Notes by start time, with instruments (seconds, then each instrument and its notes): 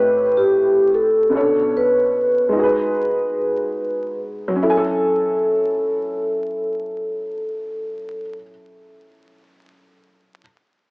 Already playing: upright piano A2 A3 C4 G4 B4, vibraphone B4
0.37 vibraphone G4
0.95 vibraphone A4
1.30 upright piano B2 B3 C#4
1.35 upright piano A4 C#5
1.40 upright piano D4
1.77 vibraphone B4
2.49 upright piano G#3 D#4
2.56 upright piano F#4 G#4
2.63 upright piano B4
4.48 upright piano F#3
4.56 upright piano C#4
4.62 upright piano E4, vibraphone A4
4.70 upright piano G#5
4.77 upright piano A4